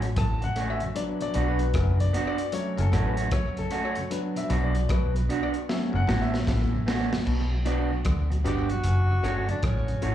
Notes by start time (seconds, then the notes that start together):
Already playing: A1
0.02 C#4 F#4, closed hi-hat
0.16 A1 A2 A5, kick, cross-stick, closed hi-hat
0.42 F#2 C#3 F#5, muted clean electric guitar stroke, closed hi-hat
0.56 A3 C#4 F#4, closed hi-hat
0.70 E5
0.80 F#2 C#3, closed hi-hat
0.95 F#3 B3 D4 D5, closed hi-hat
1.21 B2 F#3 D5, closed hi-hat
1.34 B1 B2 B3 D4 F#4, closed hi-hat
1.48 B4
1.59 B2 F#3, closed hi-hat
1.74 F#1 F#2, kick, cross-stick, closed hi-hat
1.99 B2 F#3 D5, closed hi-hat
2.13 B3 D4 F#4, closed hi-hat
2.27 D5
2.38 closed hi-hat
2.52 F#3 A3 C#4 C#5, closed hi-hat
2.78 F#1 F#2 C#3 A4, closed hi-hat
2.92 A1 A2 A3 C#4 F#4, cross-stick, closed hi-hat
3.06 B4
3.17 A3 C#4 F#4, closed hi-hat
3.31 C#5, kick, cross-stick, closed hi-hat
3.57 F#2 C#3 A4, closed hi-hat
3.70 A3 C#4 F#4, closed hi-hat
3.85 C#5
3.95 F#2 C#3, closed hi-hat
4.10 F#3 B3 D4 B4, closed hi-hat
4.36 B2 F#3 E5, closed hi-hat
4.50 B1 B2 B3 D4 F#4, closed hi-hat
4.64 D5
4.75 B2 F#3, closed hi-hat
4.89 B1 B2 B4, kick, cross-stick, closed hi-hat
5.14 B2 F#3 B4, closed hi-hat
5.29 B3 D4 F#4, closed hi-hat
5.43 D5
5.54 closed hi-hat
5.69 F#3 A3 C#4 E5, snare
5.93 F#1 F#2 C#3 F#5
6.07 A1 A2 A3 C#4 F#4, snare
6.22 E5
6.33 C#4 F#4, snare
6.47 A1 A2, kick, snare
6.72 F#2 C#3, muted clean electric guitar stroke
6.86 A3 C#4 F#4, snare
7.12 F#2 C#3, snare
7.26 B1 B2, crash
7.52 B2 F#3
7.66 B3 D4 F#4 B4 D5, closed hi-hat
7.91 B2 F#3
8.05 D2 D3, kick, cross-stick, closed hi-hat
8.30 B2 F#3, muted clean electric guitar stroke, closed hi-hat
8.44 G1 G2 B3 D4 F#4 G4 B4 D5, closed hi-hat
8.69 B2 F#3 F#4, closed hi-hat
8.84 F#1 F#2, closed hi-hat
9.10 F#2 C#3
9.23 G1 G2 A3 C#4 F#4 A4 C#5, cross-stick, closed hi-hat
9.48 F#2 C#3 D4, muted clean electric guitar stroke, closed hi-hat
9.63 A1 A2 C#4, kick, cross-stick, closed hi-hat
9.88 F#2 C#3, closed hi-hat
10.02 A1 A2 A3 C#4 F#4 A4 C#5, closed hi-hat